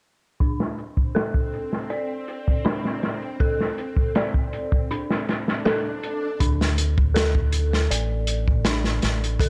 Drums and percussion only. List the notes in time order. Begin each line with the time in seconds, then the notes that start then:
0.40 kick, closed hi-hat
0.60 snare
0.78 closed hi-hat
0.97 kick
1.16 snare, closed hi-hat
1.34 kick
1.54 closed hi-hat
1.73 snare
1.90 closed hi-hat
2.28 closed hi-hat
2.48 kick
2.65 snare, closed hi-hat
2.85 snare
3.03 snare, closed hi-hat
3.22 closed hi-hat
3.40 kick, closed hi-hat
3.60 snare
3.78 closed hi-hat
3.97 kick
4.15 snare, closed hi-hat
4.34 kick
4.53 closed hi-hat
4.72 kick
4.91 closed hi-hat
5.10 snare
5.29 snare, closed hi-hat
5.48 snare
5.66 snare, closed hi-hat
6.03 closed hi-hat
6.40 kick, closed hi-hat
6.61 snare
6.78 closed hi-hat
6.98 kick
7.16 snare, closed hi-hat
7.35 kick
7.52 closed hi-hat
7.73 snare
7.91 closed hi-hat
8.27 closed hi-hat
8.48 kick
8.65 snare, closed hi-hat
8.84 snare
9.02 snare, closed hi-hat
9.24 closed hi-hat
9.40 kick, closed hi-hat